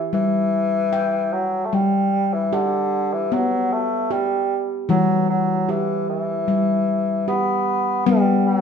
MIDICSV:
0, 0, Header, 1, 3, 480
1, 0, Start_track
1, 0, Key_signature, 1, "major"
1, 0, Tempo, 794702
1, 1038, Time_signature, 4, 2, 24, 8
1, 5200, End_track
2, 0, Start_track
2, 0, Title_t, "Handpan"
2, 0, Program_c, 0, 114
2, 0, Note_on_c, 0, 67, 58
2, 76, Note_off_c, 0, 67, 0
2, 78, Note_on_c, 0, 55, 60
2, 558, Note_off_c, 0, 55, 0
2, 560, Note_on_c, 0, 79, 56
2, 1040, Note_off_c, 0, 79, 0
2, 1043, Note_on_c, 0, 55, 61
2, 1526, Note_on_c, 0, 67, 62
2, 2003, Note_off_c, 0, 67, 0
2, 2004, Note_on_c, 0, 59, 67
2, 2480, Note_on_c, 0, 67, 59
2, 2482, Note_off_c, 0, 59, 0
2, 2939, Note_off_c, 0, 55, 0
2, 2953, Note_on_c, 0, 52, 72
2, 2958, Note_on_c, 0, 55, 63
2, 2960, Note_off_c, 0, 67, 0
2, 3435, Note_off_c, 0, 52, 0
2, 3435, Note_on_c, 0, 67, 53
2, 3906, Note_off_c, 0, 55, 0
2, 3913, Note_on_c, 0, 55, 61
2, 3915, Note_off_c, 0, 67, 0
2, 4393, Note_off_c, 0, 55, 0
2, 4396, Note_on_c, 0, 67, 55
2, 4871, Note_on_c, 0, 59, 89
2, 4872, Note_off_c, 0, 67, 0
2, 4872, Note_on_c, 0, 55, 72
2, 5200, Note_off_c, 0, 55, 0
2, 5200, Note_off_c, 0, 59, 0
2, 5200, End_track
3, 0, Start_track
3, 0, Title_t, "Bassoon"
3, 0, Program_c, 1, 70
3, 84, Note_on_c, 1, 52, 83
3, 805, Note_on_c, 1, 54, 69
3, 814, Note_off_c, 1, 52, 0
3, 998, Note_on_c, 1, 57, 53
3, 1007, Note_off_c, 1, 54, 0
3, 1050, Note_on_c, 1, 55, 88
3, 1059, Note_off_c, 1, 57, 0
3, 1408, Note_on_c, 1, 52, 69
3, 1417, Note_off_c, 1, 55, 0
3, 1527, Note_on_c, 1, 50, 71
3, 1536, Note_off_c, 1, 52, 0
3, 1889, Note_on_c, 1, 52, 67
3, 1898, Note_off_c, 1, 50, 0
3, 2014, Note_on_c, 1, 54, 75
3, 2023, Note_off_c, 1, 52, 0
3, 2248, Note_on_c, 1, 57, 76
3, 2257, Note_off_c, 1, 54, 0
3, 2488, Note_on_c, 1, 55, 68
3, 2497, Note_off_c, 1, 57, 0
3, 2803, Note_off_c, 1, 55, 0
3, 2959, Note_on_c, 1, 54, 78
3, 3182, Note_off_c, 1, 54, 0
3, 3200, Note_on_c, 1, 54, 67
3, 3445, Note_on_c, 1, 52, 70
3, 3454, Note_off_c, 1, 54, 0
3, 3676, Note_off_c, 1, 52, 0
3, 3679, Note_on_c, 1, 52, 71
3, 4371, Note_off_c, 1, 52, 0
3, 4397, Note_on_c, 1, 59, 65
3, 4849, Note_off_c, 1, 59, 0
3, 4866, Note_on_c, 1, 55, 85
3, 5113, Note_on_c, 1, 54, 76
3, 5122, Note_off_c, 1, 55, 0
3, 5200, Note_off_c, 1, 54, 0
3, 5200, End_track
0, 0, End_of_file